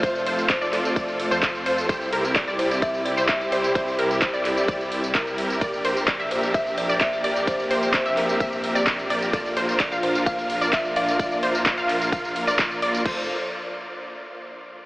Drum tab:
CC |----------------|----------------|----------------|----------------|
RD |x---x---x---x---|x---x---x---x---|x---x---x---x---|x---x---x---x---|
HH |--o---o---o---o-|--o---o---o---o-|--o---o---o---o-|--o---o---o---o-|
TB |xx-xxx-xxx-xxx-x|xx-xxx-xxx-xxx-x|xx-xxx-xxx-xxx-x|xx-xxx-xxx-xxx-x|
CP |----x-x-----x---|----x-------x---|----x-x-----x---|----x-------x---|
BD |o---o---o---o---|o---o---o---o---|o---o---o---o---|o---o---o---o---|

CC |----------------|----------------|----------------|x---------------|
RD |x---x---x---x---|x---x---x---x---|x---x---x---x---|----------------|
HH |--o---o---o---o-|--o---o---o---o-|--o---o---o---o-|----------------|
TB |xx-xxx-xxx-xxx-x|xx-xxx-xxx-xxx-x|xx-xxx-xxx-xxx-x|----------------|
CP |----x-x-----x---|----x-------x---|----x-x-----x---|----------------|
BD |o---o---o---o---|o---o---o---o---|o---o---o---o---|o---------------|